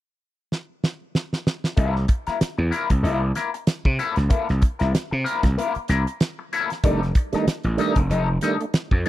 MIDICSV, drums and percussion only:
0, 0, Header, 1, 2, 480
1, 0, Start_track
1, 0, Tempo, 632911
1, 1347, Time_signature, 4, 2, 24, 8
1, 6892, End_track
2, 0, Start_track
2, 0, Title_t, "Drums"
2, 395, Note_on_c, 9, 38, 47
2, 470, Note_off_c, 9, 38, 0
2, 634, Note_on_c, 9, 38, 70
2, 710, Note_off_c, 9, 38, 0
2, 872, Note_on_c, 9, 38, 76
2, 948, Note_off_c, 9, 38, 0
2, 1007, Note_on_c, 9, 38, 60
2, 1083, Note_off_c, 9, 38, 0
2, 1113, Note_on_c, 9, 38, 87
2, 1189, Note_off_c, 9, 38, 0
2, 1244, Note_on_c, 9, 38, 73
2, 1320, Note_off_c, 9, 38, 0
2, 1342, Note_on_c, 9, 42, 70
2, 1346, Note_on_c, 9, 36, 101
2, 1418, Note_off_c, 9, 42, 0
2, 1422, Note_off_c, 9, 36, 0
2, 1484, Note_on_c, 9, 38, 23
2, 1560, Note_off_c, 9, 38, 0
2, 1580, Note_on_c, 9, 42, 62
2, 1584, Note_on_c, 9, 36, 89
2, 1656, Note_off_c, 9, 42, 0
2, 1660, Note_off_c, 9, 36, 0
2, 1719, Note_on_c, 9, 42, 42
2, 1726, Note_on_c, 9, 38, 30
2, 1795, Note_off_c, 9, 42, 0
2, 1802, Note_off_c, 9, 38, 0
2, 1828, Note_on_c, 9, 42, 92
2, 1829, Note_on_c, 9, 38, 110
2, 1904, Note_off_c, 9, 42, 0
2, 1905, Note_off_c, 9, 38, 0
2, 2066, Note_on_c, 9, 42, 78
2, 2142, Note_off_c, 9, 42, 0
2, 2199, Note_on_c, 9, 42, 51
2, 2201, Note_on_c, 9, 36, 75
2, 2275, Note_off_c, 9, 42, 0
2, 2277, Note_off_c, 9, 36, 0
2, 2313, Note_on_c, 9, 42, 69
2, 2389, Note_off_c, 9, 42, 0
2, 2543, Note_on_c, 9, 42, 69
2, 2551, Note_on_c, 9, 38, 31
2, 2619, Note_off_c, 9, 42, 0
2, 2627, Note_off_c, 9, 38, 0
2, 2686, Note_on_c, 9, 42, 45
2, 2762, Note_off_c, 9, 42, 0
2, 2783, Note_on_c, 9, 42, 72
2, 2785, Note_on_c, 9, 38, 93
2, 2859, Note_off_c, 9, 42, 0
2, 2861, Note_off_c, 9, 38, 0
2, 2921, Note_on_c, 9, 36, 76
2, 2997, Note_off_c, 9, 36, 0
2, 3027, Note_on_c, 9, 42, 71
2, 3103, Note_off_c, 9, 42, 0
2, 3155, Note_on_c, 9, 42, 39
2, 3165, Note_on_c, 9, 38, 27
2, 3231, Note_off_c, 9, 42, 0
2, 3241, Note_off_c, 9, 38, 0
2, 3262, Note_on_c, 9, 42, 80
2, 3266, Note_on_c, 9, 36, 89
2, 3338, Note_off_c, 9, 42, 0
2, 3342, Note_off_c, 9, 36, 0
2, 3405, Note_on_c, 9, 38, 26
2, 3406, Note_on_c, 9, 42, 29
2, 3481, Note_off_c, 9, 38, 0
2, 3481, Note_off_c, 9, 42, 0
2, 3502, Note_on_c, 9, 42, 72
2, 3507, Note_on_c, 9, 36, 91
2, 3578, Note_off_c, 9, 42, 0
2, 3583, Note_off_c, 9, 36, 0
2, 3637, Note_on_c, 9, 42, 44
2, 3645, Note_on_c, 9, 38, 32
2, 3713, Note_off_c, 9, 42, 0
2, 3721, Note_off_c, 9, 38, 0
2, 3752, Note_on_c, 9, 42, 93
2, 3753, Note_on_c, 9, 38, 110
2, 3828, Note_off_c, 9, 42, 0
2, 3829, Note_off_c, 9, 38, 0
2, 3992, Note_on_c, 9, 42, 81
2, 4067, Note_off_c, 9, 42, 0
2, 4119, Note_on_c, 9, 42, 46
2, 4120, Note_on_c, 9, 36, 66
2, 4127, Note_on_c, 9, 38, 27
2, 4195, Note_off_c, 9, 42, 0
2, 4196, Note_off_c, 9, 36, 0
2, 4203, Note_off_c, 9, 38, 0
2, 4236, Note_on_c, 9, 42, 74
2, 4312, Note_off_c, 9, 42, 0
2, 4360, Note_on_c, 9, 42, 32
2, 4436, Note_off_c, 9, 42, 0
2, 4460, Note_on_c, 9, 42, 70
2, 4468, Note_on_c, 9, 38, 35
2, 4536, Note_off_c, 9, 42, 0
2, 4544, Note_off_c, 9, 38, 0
2, 4606, Note_on_c, 9, 42, 48
2, 4682, Note_off_c, 9, 42, 0
2, 4706, Note_on_c, 9, 42, 77
2, 4708, Note_on_c, 9, 38, 94
2, 4782, Note_off_c, 9, 42, 0
2, 4784, Note_off_c, 9, 38, 0
2, 4951, Note_on_c, 9, 42, 73
2, 5027, Note_off_c, 9, 42, 0
2, 5084, Note_on_c, 9, 42, 43
2, 5094, Note_on_c, 9, 38, 30
2, 5159, Note_off_c, 9, 42, 0
2, 5170, Note_off_c, 9, 38, 0
2, 5184, Note_on_c, 9, 42, 83
2, 5185, Note_on_c, 9, 36, 96
2, 5260, Note_off_c, 9, 42, 0
2, 5261, Note_off_c, 9, 36, 0
2, 5331, Note_on_c, 9, 38, 21
2, 5332, Note_on_c, 9, 42, 29
2, 5407, Note_off_c, 9, 38, 0
2, 5408, Note_off_c, 9, 42, 0
2, 5422, Note_on_c, 9, 42, 64
2, 5425, Note_on_c, 9, 36, 83
2, 5498, Note_off_c, 9, 42, 0
2, 5501, Note_off_c, 9, 36, 0
2, 5557, Note_on_c, 9, 42, 45
2, 5565, Note_on_c, 9, 38, 32
2, 5633, Note_off_c, 9, 42, 0
2, 5641, Note_off_c, 9, 38, 0
2, 5670, Note_on_c, 9, 42, 97
2, 5671, Note_on_c, 9, 38, 112
2, 5746, Note_off_c, 9, 42, 0
2, 5747, Note_off_c, 9, 38, 0
2, 5791, Note_on_c, 9, 42, 34
2, 5866, Note_off_c, 9, 42, 0
2, 5902, Note_on_c, 9, 42, 86
2, 5978, Note_off_c, 9, 42, 0
2, 6034, Note_on_c, 9, 42, 53
2, 6038, Note_on_c, 9, 36, 74
2, 6110, Note_off_c, 9, 42, 0
2, 6113, Note_off_c, 9, 36, 0
2, 6148, Note_on_c, 9, 42, 75
2, 6224, Note_off_c, 9, 42, 0
2, 6380, Note_on_c, 9, 42, 73
2, 6388, Note_on_c, 9, 38, 39
2, 6456, Note_off_c, 9, 42, 0
2, 6464, Note_off_c, 9, 38, 0
2, 6527, Note_on_c, 9, 42, 43
2, 6602, Note_off_c, 9, 42, 0
2, 6626, Note_on_c, 9, 42, 72
2, 6628, Note_on_c, 9, 38, 107
2, 6702, Note_off_c, 9, 42, 0
2, 6704, Note_off_c, 9, 38, 0
2, 6759, Note_on_c, 9, 36, 78
2, 6835, Note_off_c, 9, 36, 0
2, 6869, Note_on_c, 9, 42, 72
2, 6892, Note_off_c, 9, 42, 0
2, 6892, End_track
0, 0, End_of_file